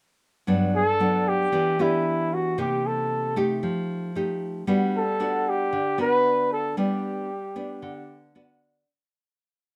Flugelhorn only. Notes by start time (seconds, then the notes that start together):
0.76 A4
1.28 G4
1.81 E4
2.34 F#4
2.60 G4
2.86 A4
4.97 A4
5.49 G4
6.01 B4
6.53 A4
6.78 G4